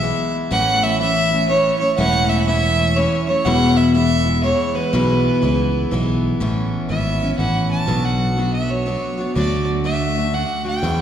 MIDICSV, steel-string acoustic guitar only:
0, 0, Header, 1, 2, 480
1, 0, Start_track
1, 0, Key_signature, 3, "major"
1, 0, Tempo, 491400
1, 501, Time_signature, 3, 2, 24, 8
1, 10759, End_track
2, 0, Start_track
2, 0, Title_t, "Steel-string acoustic guitar"
2, 0, Program_c, 0, 25
2, 18, Note_on_c, 0, 52, 68
2, 26, Note_on_c, 0, 56, 72
2, 34, Note_on_c, 0, 59, 69
2, 40, Note_on_c, 0, 64, 66
2, 495, Note_off_c, 0, 52, 0
2, 495, Note_on_c, 0, 45, 78
2, 499, Note_on_c, 0, 52, 75
2, 500, Note_off_c, 0, 56, 0
2, 504, Note_off_c, 0, 59, 0
2, 504, Note_on_c, 0, 57, 84
2, 506, Note_off_c, 0, 64, 0
2, 508, Note_on_c, 0, 61, 85
2, 510, Note_on_c, 0, 64, 87
2, 970, Note_off_c, 0, 52, 0
2, 971, Note_off_c, 0, 57, 0
2, 974, Note_on_c, 0, 52, 62
2, 977, Note_off_c, 0, 45, 0
2, 980, Note_off_c, 0, 61, 0
2, 983, Note_on_c, 0, 57, 59
2, 992, Note_on_c, 0, 61, 62
2, 995, Note_off_c, 0, 64, 0
2, 999, Note_on_c, 0, 64, 67
2, 1268, Note_off_c, 0, 64, 0
2, 1280, Note_on_c, 0, 64, 49
2, 1283, Note_off_c, 0, 61, 0
2, 1285, Note_off_c, 0, 52, 0
2, 1290, Note_off_c, 0, 57, 0
2, 1295, Note_on_c, 0, 61, 48
2, 1308, Note_on_c, 0, 57, 40
2, 1446, Note_off_c, 0, 57, 0
2, 1449, Note_on_c, 0, 52, 65
2, 1452, Note_off_c, 0, 61, 0
2, 1455, Note_off_c, 0, 64, 0
2, 1457, Note_on_c, 0, 57, 62
2, 1464, Note_on_c, 0, 61, 58
2, 1472, Note_on_c, 0, 64, 64
2, 1743, Note_off_c, 0, 64, 0
2, 1755, Note_on_c, 0, 64, 46
2, 1757, Note_off_c, 0, 61, 0
2, 1763, Note_off_c, 0, 52, 0
2, 1766, Note_off_c, 0, 57, 0
2, 1768, Note_on_c, 0, 61, 45
2, 1780, Note_on_c, 0, 57, 42
2, 1929, Note_off_c, 0, 57, 0
2, 1930, Note_on_c, 0, 45, 77
2, 1933, Note_off_c, 0, 61, 0
2, 1933, Note_off_c, 0, 64, 0
2, 1935, Note_on_c, 0, 52, 82
2, 1941, Note_on_c, 0, 57, 83
2, 1945, Note_on_c, 0, 61, 93
2, 1951, Note_on_c, 0, 64, 83
2, 2400, Note_off_c, 0, 52, 0
2, 2403, Note_off_c, 0, 57, 0
2, 2404, Note_on_c, 0, 52, 55
2, 2412, Note_off_c, 0, 61, 0
2, 2414, Note_off_c, 0, 45, 0
2, 2415, Note_on_c, 0, 57, 63
2, 2424, Note_on_c, 0, 61, 65
2, 2428, Note_off_c, 0, 64, 0
2, 2432, Note_on_c, 0, 64, 68
2, 2891, Note_off_c, 0, 52, 0
2, 2891, Note_off_c, 0, 57, 0
2, 2895, Note_on_c, 0, 52, 60
2, 2901, Note_off_c, 0, 61, 0
2, 2903, Note_on_c, 0, 57, 62
2, 2912, Note_on_c, 0, 61, 67
2, 2916, Note_off_c, 0, 64, 0
2, 2920, Note_on_c, 0, 64, 61
2, 3184, Note_off_c, 0, 64, 0
2, 3196, Note_on_c, 0, 64, 45
2, 3199, Note_off_c, 0, 61, 0
2, 3205, Note_off_c, 0, 52, 0
2, 3208, Note_off_c, 0, 57, 0
2, 3210, Note_on_c, 0, 61, 43
2, 3223, Note_on_c, 0, 57, 40
2, 3369, Note_on_c, 0, 40, 81
2, 3372, Note_off_c, 0, 64, 0
2, 3376, Note_on_c, 0, 47, 83
2, 3378, Note_off_c, 0, 57, 0
2, 3380, Note_off_c, 0, 61, 0
2, 3381, Note_on_c, 0, 52, 90
2, 3382, Note_on_c, 0, 56, 81
2, 3387, Note_on_c, 0, 59, 88
2, 3391, Note_on_c, 0, 64, 91
2, 3849, Note_off_c, 0, 52, 0
2, 3850, Note_off_c, 0, 56, 0
2, 3853, Note_off_c, 0, 40, 0
2, 3853, Note_on_c, 0, 52, 67
2, 3856, Note_off_c, 0, 47, 0
2, 3861, Note_on_c, 0, 56, 64
2, 3868, Note_off_c, 0, 59, 0
2, 3872, Note_on_c, 0, 59, 60
2, 3876, Note_off_c, 0, 64, 0
2, 3880, Note_on_c, 0, 64, 61
2, 4148, Note_off_c, 0, 64, 0
2, 4157, Note_off_c, 0, 59, 0
2, 4160, Note_on_c, 0, 64, 48
2, 4163, Note_off_c, 0, 52, 0
2, 4165, Note_off_c, 0, 56, 0
2, 4168, Note_on_c, 0, 59, 44
2, 4176, Note_on_c, 0, 56, 42
2, 4185, Note_on_c, 0, 52, 41
2, 4319, Note_off_c, 0, 52, 0
2, 4326, Note_off_c, 0, 56, 0
2, 4331, Note_on_c, 0, 52, 60
2, 4334, Note_off_c, 0, 64, 0
2, 4336, Note_off_c, 0, 59, 0
2, 4338, Note_on_c, 0, 56, 65
2, 4348, Note_on_c, 0, 59, 69
2, 4357, Note_on_c, 0, 64, 72
2, 4626, Note_off_c, 0, 64, 0
2, 4637, Note_off_c, 0, 59, 0
2, 4638, Note_on_c, 0, 64, 46
2, 4642, Note_off_c, 0, 52, 0
2, 4645, Note_off_c, 0, 56, 0
2, 4649, Note_on_c, 0, 59, 46
2, 4656, Note_on_c, 0, 56, 45
2, 4666, Note_on_c, 0, 52, 37
2, 4813, Note_off_c, 0, 52, 0
2, 4813, Note_off_c, 0, 64, 0
2, 4814, Note_off_c, 0, 56, 0
2, 4815, Note_on_c, 0, 40, 85
2, 4818, Note_off_c, 0, 59, 0
2, 4820, Note_on_c, 0, 47, 75
2, 4824, Note_on_c, 0, 52, 84
2, 4825, Note_on_c, 0, 56, 79
2, 4831, Note_on_c, 0, 59, 88
2, 4834, Note_on_c, 0, 64, 88
2, 5280, Note_off_c, 0, 52, 0
2, 5289, Note_off_c, 0, 56, 0
2, 5292, Note_on_c, 0, 52, 66
2, 5296, Note_off_c, 0, 40, 0
2, 5297, Note_off_c, 0, 59, 0
2, 5298, Note_off_c, 0, 47, 0
2, 5300, Note_on_c, 0, 56, 71
2, 5305, Note_off_c, 0, 64, 0
2, 5309, Note_on_c, 0, 59, 69
2, 5317, Note_on_c, 0, 64, 72
2, 5764, Note_off_c, 0, 52, 0
2, 5773, Note_off_c, 0, 56, 0
2, 5776, Note_on_c, 0, 52, 66
2, 5783, Note_off_c, 0, 59, 0
2, 5785, Note_on_c, 0, 56, 67
2, 5787, Note_off_c, 0, 64, 0
2, 5794, Note_on_c, 0, 59, 76
2, 5801, Note_on_c, 0, 64, 76
2, 6248, Note_off_c, 0, 52, 0
2, 6251, Note_off_c, 0, 59, 0
2, 6254, Note_on_c, 0, 45, 77
2, 6259, Note_off_c, 0, 56, 0
2, 6260, Note_off_c, 0, 64, 0
2, 6260, Note_on_c, 0, 52, 78
2, 6263, Note_on_c, 0, 59, 87
2, 6268, Note_on_c, 0, 61, 85
2, 6272, Note_on_c, 0, 64, 85
2, 6718, Note_off_c, 0, 52, 0
2, 6730, Note_on_c, 0, 52, 52
2, 6736, Note_off_c, 0, 45, 0
2, 6739, Note_off_c, 0, 59, 0
2, 6741, Note_off_c, 0, 61, 0
2, 6743, Note_on_c, 0, 59, 52
2, 6745, Note_off_c, 0, 64, 0
2, 6752, Note_on_c, 0, 61, 57
2, 6756, Note_on_c, 0, 64, 57
2, 7027, Note_off_c, 0, 64, 0
2, 7038, Note_on_c, 0, 64, 41
2, 7042, Note_off_c, 0, 52, 0
2, 7042, Note_off_c, 0, 61, 0
2, 7049, Note_off_c, 0, 59, 0
2, 7053, Note_on_c, 0, 61, 42
2, 7064, Note_on_c, 0, 59, 40
2, 7206, Note_on_c, 0, 52, 57
2, 7207, Note_off_c, 0, 59, 0
2, 7214, Note_off_c, 0, 61, 0
2, 7214, Note_off_c, 0, 64, 0
2, 7219, Note_on_c, 0, 59, 55
2, 7226, Note_on_c, 0, 61, 65
2, 7234, Note_on_c, 0, 64, 63
2, 7688, Note_off_c, 0, 59, 0
2, 7689, Note_on_c, 0, 47, 76
2, 7690, Note_off_c, 0, 52, 0
2, 7694, Note_on_c, 0, 54, 71
2, 7697, Note_off_c, 0, 61, 0
2, 7699, Note_on_c, 0, 59, 73
2, 7701, Note_on_c, 0, 62, 73
2, 7702, Note_off_c, 0, 64, 0
2, 7706, Note_on_c, 0, 66, 83
2, 8168, Note_off_c, 0, 54, 0
2, 8170, Note_off_c, 0, 59, 0
2, 8172, Note_on_c, 0, 54, 53
2, 8174, Note_off_c, 0, 47, 0
2, 8182, Note_on_c, 0, 59, 56
2, 8188, Note_off_c, 0, 62, 0
2, 8192, Note_on_c, 0, 62, 56
2, 8195, Note_off_c, 0, 66, 0
2, 8199, Note_on_c, 0, 66, 60
2, 8648, Note_off_c, 0, 54, 0
2, 8649, Note_off_c, 0, 59, 0
2, 8652, Note_on_c, 0, 54, 55
2, 8660, Note_off_c, 0, 62, 0
2, 8661, Note_on_c, 0, 59, 53
2, 8671, Note_on_c, 0, 62, 63
2, 8675, Note_off_c, 0, 66, 0
2, 8679, Note_on_c, 0, 66, 57
2, 8953, Note_off_c, 0, 66, 0
2, 8964, Note_off_c, 0, 54, 0
2, 8964, Note_on_c, 0, 66, 42
2, 8969, Note_off_c, 0, 59, 0
2, 8969, Note_off_c, 0, 62, 0
2, 8981, Note_on_c, 0, 62, 43
2, 8992, Note_on_c, 0, 59, 38
2, 9137, Note_on_c, 0, 50, 71
2, 9138, Note_off_c, 0, 66, 0
2, 9141, Note_off_c, 0, 62, 0
2, 9142, Note_off_c, 0, 59, 0
2, 9146, Note_on_c, 0, 57, 79
2, 9153, Note_on_c, 0, 62, 82
2, 9158, Note_on_c, 0, 66, 81
2, 9600, Note_off_c, 0, 50, 0
2, 9611, Note_on_c, 0, 50, 52
2, 9613, Note_off_c, 0, 57, 0
2, 9620, Note_off_c, 0, 62, 0
2, 9624, Note_on_c, 0, 57, 56
2, 9632, Note_on_c, 0, 62, 59
2, 9637, Note_off_c, 0, 66, 0
2, 9641, Note_on_c, 0, 66, 62
2, 9910, Note_off_c, 0, 66, 0
2, 9922, Note_on_c, 0, 66, 47
2, 9924, Note_off_c, 0, 50, 0
2, 9924, Note_off_c, 0, 62, 0
2, 9931, Note_off_c, 0, 57, 0
2, 9935, Note_on_c, 0, 62, 39
2, 9947, Note_on_c, 0, 57, 39
2, 10090, Note_on_c, 0, 50, 58
2, 10091, Note_off_c, 0, 57, 0
2, 10097, Note_off_c, 0, 66, 0
2, 10100, Note_off_c, 0, 62, 0
2, 10103, Note_on_c, 0, 57, 58
2, 10111, Note_on_c, 0, 62, 55
2, 10119, Note_on_c, 0, 66, 59
2, 10386, Note_off_c, 0, 66, 0
2, 10398, Note_on_c, 0, 66, 45
2, 10402, Note_off_c, 0, 62, 0
2, 10404, Note_off_c, 0, 50, 0
2, 10410, Note_off_c, 0, 57, 0
2, 10414, Note_on_c, 0, 62, 37
2, 10426, Note_on_c, 0, 57, 35
2, 10575, Note_off_c, 0, 66, 0
2, 10578, Note_on_c, 0, 40, 71
2, 10583, Note_off_c, 0, 62, 0
2, 10585, Note_on_c, 0, 47, 78
2, 10586, Note_on_c, 0, 54, 82
2, 10587, Note_off_c, 0, 57, 0
2, 10591, Note_on_c, 0, 56, 75
2, 10595, Note_on_c, 0, 59, 79
2, 10600, Note_on_c, 0, 64, 79
2, 10759, Note_off_c, 0, 40, 0
2, 10759, Note_off_c, 0, 47, 0
2, 10759, Note_off_c, 0, 54, 0
2, 10759, Note_off_c, 0, 56, 0
2, 10759, Note_off_c, 0, 59, 0
2, 10759, Note_off_c, 0, 64, 0
2, 10759, End_track
0, 0, End_of_file